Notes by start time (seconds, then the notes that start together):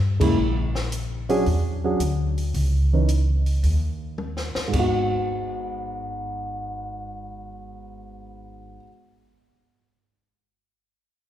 Already playing: G2
0.20 C#3 G#3 A#3 E4, kick, crash
0.38 A#1
0.75 snare
0.92 closed hi-hat
1.29 F#3 C#4 D4 G#4, open hi-hat
1.46 E2, open hi-hat
1.84 F#3 C#4 D4 G#4
2.00 D2, closed hi-hat
2.38 open hi-hat
2.54 C#2, open hi-hat
2.93 E3 C#4 D#4 B4
3.08 closed hi-hat
3.46 open hi-hat
3.63 D#2, open hi-hat
4.18 mid tom
4.37 snare
4.55 muted upright bass stroke, snare
4.68 G#2 G#3
4.73 G#1 B3, kick, crash
4.79 F#4